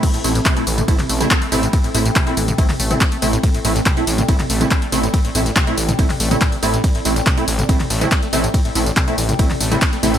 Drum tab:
CC |x---------------|----------------|----------------|----------------|
RD |x---x---x---x---|x---x---x---x---|x---x---x---x---|x---x---x---x---|
HH |xxoxxxoxxxoxxxox|xxoxxxoxxooxxxox|xxoxxxoxxxoxxxox|xxoxxxoxxooxxxox|
TB |x-xxx-xxx-xxx-xx|x-xxx-xxx-xxx-xx|x-xxx-xxx-xxx-xx|x-xxx-xxx-xxx-xx|
CP |----x----x--x---|----x----x--x---|----x----x--x---|----x----x--x---|
T2 |-------o-o-o----|-------o-o-o----|-------o-o-o----|-------o-o-o----|
BD |o---o---o---o---|o---o---o---o---|o---o---o---o---|o---o---o---o---|

CC |----------------|----------------|
RD |x---x---x---x---|x---x---x---x---|
HH |xxoxxxoxxxoxxxox|xxoxxxoxxooxxxox|
TB |x-xxx-xxx-xxx-xx|x-xxx-xxx-xxx-xx|
CP |----x----x--x---|----x----x--x---|
T2 |-------o-o-o----|-------o-o-o----|
BD |o---o---o---o---|o---o---o---o---|